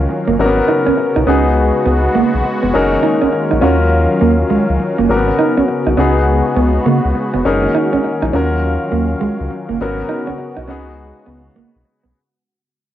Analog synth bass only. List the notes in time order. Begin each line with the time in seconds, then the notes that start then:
0.28 F#1
0.39 G#1
0.87 B1
1.17 B1
1.27 C#2
1.86 C#2
2.16 B1
2.34 B1
2.64 F1
2.75 F#1
3.23 A#1
3.53 A#1
3.63 D#2
4.22 D#2
4.51 C#2
4.70 C#2
4.99 F#1
5.09 G#1
5.58 B1
5.87 B1
5.97 C#2
6.56 C#2
6.86 C#3
7.05 C#2
7.35 F1
7.45 F#1
7.93 A#1
8.23 A#1
8.34 D#2
8.93 D#2
9.22 C#2
9.40 C#2
9.70 F#1
9.81 G#1
10.28 B1
10.58 B1
10.68 C#2
11.27 C#2
11.57 B1
11.76 B1
12.05 B1